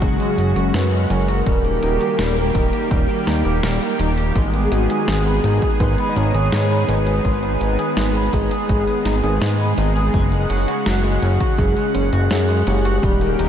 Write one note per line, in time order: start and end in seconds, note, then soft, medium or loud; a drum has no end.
0.00 0.18 F#1 loud
0.00 1.44 C#3 medium
0.00 1.44 F#3 medium
0.00 0.15 F#3 medium
0.00 1.42 G#3 medium
0.00 1.43 F#4 medium
0.00 0.76 G#4 loud
0.00 kick loud
0.00 closed hi-hat soft
0.20 0.28 G#3 medium
0.20 closed hi-hat soft
0.38 0.54 F#1 medium
0.38 0.51 C#4 medium
0.38 closed hi-hat medium
0.56 0.72 F#1 medium
0.56 0.64 F#4 medium
0.56 closed hi-hat medium
0.74 1.06 F#2 medium
0.74 0.82 F#3 medium
0.74 1.12 B4 loud
0.74 snare loud
0.74 closed hi-hat medium
0.92 1.10 G#3 medium
0.92 closed hi-hat soft
1.10 1.43 F#1 loud
1.10 1.27 C#4 medium
1.10 4.00 A#4 loud
1.10 closed hi-hat medium
1.28 1.41 F#4 medium
1.28 closed hi-hat medium
1.46 1.79 D#1 medium
1.46 10.10 D#3 medium
1.46 4.33 G3 medium
1.46 1.59 G3 medium
1.46 4.33 A#3 medium
1.46 4.33 G4 medium
1.46 kick loud
1.46 closed hi-hat soft
1.65 1.78 A#3 medium
1.65 closed hi-hat soft
1.83 1.99 D#1 medium
1.83 1.90 D#4 medium
1.83 closed hi-hat medium
2.01 2.14 G4 medium
2.01 closed hi-hat medium
2.19 2.51 D#1 medium
2.19 2.32 G3 medium
2.19 snare loud
2.19 closed hi-hat medium
2.37 2.45 A#3 medium
2.37 closed hi-hat soft
2.55 2.71 D#1 medium
2.55 2.68 D#4 medium
2.55 kick loud
2.55 closed hi-hat medium
2.73 2.81 G4 medium
2.73 closed hi-hat soft
2.91 3.07 D#1 loud
2.91 2.99 G3 medium
2.91 kick loud
2.91 closed hi-hat soft
3.09 3.26 A#3 medium
3.09 closed hi-hat soft
3.27 3.43 D#2 medium
3.27 3.44 D#4 medium
3.27 snare medium
3.27 closed hi-hat medium
3.45 3.61 D#1 medium
3.45 3.58 G4 medium
3.45 closed hi-hat soft
3.63 3.80 D#1 medium
3.63 3.76 G3 medium
3.63 snare loud
3.63 closed hi-hat medium
3.81 3.94 A#3 medium
3.81 closed hi-hat soft
3.99 4.32 D#1 medium
3.99 4.07 D#4 medium
3.99 closed hi-hat medium
4.18 4.31 G4 medium
4.18 closed hi-hat soft
4.35 4.68 G#1 loud
4.35 12.99 G#3 medium
4.35 4.49 G#3 medium
4.35 10.10 B3 medium
4.35 10.10 G#4 medium
4.35 kick loud
4.35 closed hi-hat soft
4.54 4.67 B3 medium
4.54 closed hi-hat soft
4.65 4.73 G#4 medium
4.72 4.88 G#1 medium
4.72 4.80 D#4 medium
4.72 5.10 F#4 medium
4.72 closed hi-hat medium
4.90 5.03 G#4 medium
4.90 closed hi-hat soft
5.08 5.40 G#1 medium
5.08 5.21 G#3 medium
5.08 5.82 G#4 loud
5.08 snare loud
5.08 closed hi-hat soft
5.26 5.34 B3 medium
5.26 closed hi-hat soft
5.44 5.60 G#1 medium
5.44 5.57 D#4 medium
5.44 closed hi-hat medium
5.62 5.70 G#4 medium
5.62 kick loud
5.62 closed hi-hat soft
5.80 5.96 G#1 loud
5.80 5.88 G#3 loud
5.80 6.11 B4 loud
5.80 kick loud
5.80 closed hi-hat soft
5.98 6.16 B3 medium
5.98 closed hi-hat soft
6.09 6.18 D#5 medium
6.16 6.33 G#1 medium
6.16 6.34 D#4 medium
6.16 6.90 C#5 loud
6.16 closed hi-hat medium
6.34 6.51 G#1 medium
6.34 6.47 G#4 medium
6.34 closed hi-hat soft
6.52 6.85 G#2 medium
6.52 6.66 G#3 medium
6.52 snare loud
6.52 closed hi-hat soft
6.71 6.84 B3 medium
6.71 closed hi-hat soft
6.89 7.21 G#1 loud
6.89 6.97 D#4 medium
6.89 7.24 B4 loud
6.89 closed hi-hat medium
7.07 7.20 G#4 medium
7.07 closed hi-hat soft
7.25 7.57 G#1 loud
7.25 7.38 G#3 medium
7.25 8.35 B4 loud
7.25 kick loud
7.25 closed hi-hat soft
7.43 7.51 B3 medium
7.43 closed hi-hat soft
7.61 7.77 G#1 medium
7.61 7.74 D#4 medium
7.61 closed hi-hat medium
7.79 7.87 G#4 medium
7.79 closed hi-hat soft
7.97 8.29 G#1 medium
7.97 8.05 G#3 loud
7.97 snare loud
7.97 closed hi-hat soft
8.15 8.32 B3 medium
8.15 closed hi-hat soft
8.33 8.49 G#1 medium
8.33 8.50 D#4 medium
8.33 9.42 G#4 medium
8.33 kick loud
8.33 closed hi-hat medium
8.51 8.64 G#4 medium
8.51 closed hi-hat soft
8.69 8.86 G#1 medium
8.69 8.82 G#3 medium
8.69 kick loud
8.69 closed hi-hat soft
8.87 9.00 B3 medium
8.87 closed hi-hat soft
9.05 9.22 G#1 medium
9.05 9.13 D#4 medium
9.05 snare medium
9.05 closed hi-hat medium
9.23 9.40 G#1 medium
9.23 9.37 G#4 medium
9.23 closed hi-hat soft
9.41 9.74 G#2 medium
9.41 9.55 G#3 medium
9.41 snare loud
9.41 closed hi-hat soft
9.60 9.67 B3 medium
9.60 closed hi-hat soft
9.78 10.10 G#1 loud
9.78 9.91 D#4 medium
9.78 closed hi-hat medium
9.96 10.04 G#4 medium
9.96 closed hi-hat soft
10.14 10.46 F#1 loud
10.14 13.00 C#3 medium
10.14 10.22 F#3 loud
10.14 13.00 F#5 medium
10.14 kick loud
10.14 closed hi-hat soft
10.32 10.49 G#3 medium
10.32 closed hi-hat soft
10.50 10.66 F#1 medium
10.50 10.67 C#4 medium
10.50 closed hi-hat medium
10.68 10.81 F#4 medium
10.68 closed hi-hat medium
10.86 11.19 F#1 medium
10.86 10.99 F#3 medium
10.86 11.60 F#4 loud
10.86 snare loud
10.86 closed hi-hat medium
11.04 11.17 G#3 medium
11.04 closed hi-hat soft
11.22 11.39 F#1 medium
11.22 11.30 C#4 medium
11.22 closed hi-hat medium
11.40 11.53 F#4 medium
11.40 kick loud
11.40 closed hi-hat soft
11.58 11.75 F#1 loud
11.58 11.71 F#3 medium
11.58 12.30 G#4 loud
11.58 kick loud
11.58 closed hi-hat soft
11.77 11.84 G#3 medium
11.77 closed hi-hat soft
11.95 12.11 F#1 medium
11.95 12.08 C#4 medium
11.95 closed hi-hat medium
12.13 12.29 F#1 medium
12.13 12.21 F#4 medium
12.13 closed hi-hat soft
12.31 12.63 F#2 medium
12.31 12.39 F#3 loud
12.31 12.68 G#4 loud
12.31 snare loud
12.31 closed hi-hat medium
12.49 12.66 G#3 medium
12.49 closed hi-hat soft
12.67 12.99 F#1 loud
12.67 12.84 C#4 medium
12.67 13.49 G4 loud
12.67 closed hi-hat medium
12.85 12.98 F#4 medium
12.85 closed hi-hat soft
13.03 13.35 D#1 loud
13.03 13.49 D#3 medium
13.03 13.49 G3 medium
13.03 13.16 G3 medium
13.03 13.49 A#3 medium
13.03 13.49 G4 medium
13.03 kick loud
13.03 closed hi-hat soft
13.21 13.34 A#3 medium
13.21 closed hi-hat soft
13.39 13.49 D#1 medium
13.39 13.47 D#4 medium
13.39 closed hi-hat medium